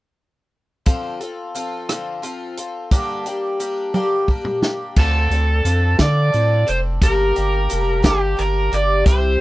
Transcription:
0.86 twelve-string acoustic guitar D3 F3 C4 F4 A4, kick, closed hi-hat
1.21 twelve-string acoustic guitar C4 F4 A4, closed hi-hat
1.55 twelve-string acoustic guitar F3 C4 F4 A4, closed hi-hat
1.89 twelve-string acoustic guitar D3 F3 C4 F4 A4, cross-stick, closed hi-hat
2.22 twelve-string acoustic guitar F3 C4 F4 A4, closed hi-hat
2.57 twelve-string acoustic guitar C4 F4 A4, closed hi-hat
2.91 twelve-string acoustic guitar G2 D3 G3 A#3 D4 G4, kick, closed hi-hat
3.26 twelve-string acoustic guitar G3 A#3 D4 G4, closed hi-hat
3.60 twelve-string acoustic guitar G3 A#3 D4 G4, closed hi-hat
3.94 twelve-string acoustic guitar G2 D3 G3 A#3 D4 G4, high tom
4.28 twelve-string acoustic guitar G3 A#3 D4 G4, kick
4.45 mid tom
4.62 twelve-string acoustic guitar G3 A#3 D4 G4, snare
4.96 sub bass D2, twelve-string acoustic guitar D3 F3 C4 D4 A4, electric slide guitar A4, kick, crash
5.30 sub bass D2, twelve-string acoustic guitar C4 D4 A4, closed hi-hat
5.65 sub bass F2, twelve-string acoustic guitar F3 C4 D4 A4, closed hi-hat
5.99 sub bass D3, twelve-string acoustic guitar D3 F3 C4 D4 A4, electric slide guitar D5, kick, snare, closed hi-hat
6.32 sub bass A2, twelve-string acoustic guitar F3 C4 D4 A4, closed hi-hat
6.67 sub bass F1, twelve-string acoustic guitar C4 D4 A4, electric slide guitar C5, closed hi-hat
7.02 sub bass G1, twelve-string acoustic guitar G2 D3 G3 A#3 D4 G4, electric slide guitar A#4, kick, closed hi-hat
7.36 sub bass G1, twelve-string acoustic guitar G3 A#3 D4 G4, closed hi-hat
7.69 sub bass F1, twelve-string acoustic guitar G3 A#3 D4 G4, closed hi-hat
8.03 sub bass G1, twelve-string acoustic guitar G2 D3 G3 A#3 D4 G4, electric slide guitar G4, kick, snare, closed hi-hat
8.37 sub bass G1, twelve-string acoustic guitar G3 A#3 D4 G4, electric slide guitar A#4, closed hi-hat
8.72 sub bass G1, twelve-string acoustic guitar G3 A#3 D4 G4, electric slide guitar D5, closed hi-hat
9.06 sub bass C2, twelve-string acoustic guitar C3 G3 C4 E4 G4, electric slide guitar C5, kick, closed hi-hat

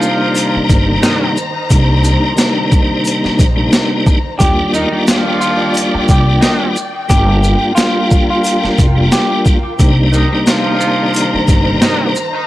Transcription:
Already playing: tonewheel organ C3 G3 A#3 D4 D#4, string section D#3 C5 A#5, horn section F3 F4
0.02 shaker, maracas
0.35 closed hi-hat, maracas
0.55 muted upright bass stroke, high woodblock
0.69 upright bass G1, kick, closed hi-hat, maracas, shaker
1.03 horn section D#3 D#4, snare, closed hi-hat, maracas
1.37 maracas, shaker
1.69 upright bass C2, tonewheel organ C3 G3 A#3 D4 D#4, kick, closed hi-hat, maracas
2.04 closed hi-hat, high woodblock, maracas, shaker
2.35 tonewheel organ C3 G3 A#3 D4 D#4, snare, closed hi-hat, maracas
2.72 kick, shaker, maracas
3.05 closed hi-hat, maracas
3.24 muted upright bass stroke, snare
3.39 upright bass A#1, kick, closed hi-hat, maracas, shaker
3.55 tonewheel organ C3 G3 A#3 D4 D#4
3.73 snare, closed hi-hat, maracas
4.06 kick, high woodblock, maracas, shaker
4.39 tonewheel organ D#2 G3 A#3 D4 F4, upright bass D#2, string section D#3 D5 G5, clean electric guitar G4, kick, closed hi-hat, maracas
4.73 horn section D#3 D#4, clean electric guitar D#4, maracas, shaker
4.91 tonewheel organ D#2 G3 A#3 D4 F4
5.07 horn section F3 F4, snare, closed hi-hat, maracas
5.41 clean electric guitar F4, shaker, maracas
5.74 closed hi-hat, maracas
5.94 muted upright bass stroke, high woodblock
6.08 upright bass C2, clean electric guitar G4, kick, closed hi-hat, maracas, shaker
6.41 horn section D#3 D#4, snare, closed hi-hat, maracas
6.76 maracas, shaker
7.08 upright bass G1, tonewheel organ G3 A#3 D4 F4, string section F4 A#4, clean electric guitar G4, kick, closed hi-hat, maracas
7.43 maracas, shaker
7.75 tonewheel organ G3 A#3 D4 F4, clean electric guitar F4, snare, closed hi-hat, maracas
8.11 kick, shaker, maracas
8.30 clean electric guitar F4
8.44 closed hi-hat, maracas
8.63 muted upright bass stroke, snare, high woodblock
8.78 upright bass F1, kick, closed hi-hat, maracas, shaker
8.95 tonewheel organ G3 A#3 D4 F4
9.12 clean electric guitar G4, snare, closed hi-hat, maracas
9.46 kick, maracas, shaker
9.78 upright bass C2, tonewheel organ C3 G3 A#3 D4 D#4, string section D#3 C5 A#5, kick, closed hi-hat, maracas
10.12 horn section D#3 D#4, maracas, shaker
10.32 tonewheel organ C3 G3 A#3 D4 D#4
10.47 horn section F3 F4, snare, closed hi-hat, maracas
10.80 shaker, maracas
11.14 closed hi-hat, maracas
11.34 muted upright bass stroke, high woodblock
11.48 upright bass G1, kick, closed hi-hat, maracas, shaker
11.82 horn section D#3 D#4, snare, closed hi-hat, maracas
12.15 maracas, shaker

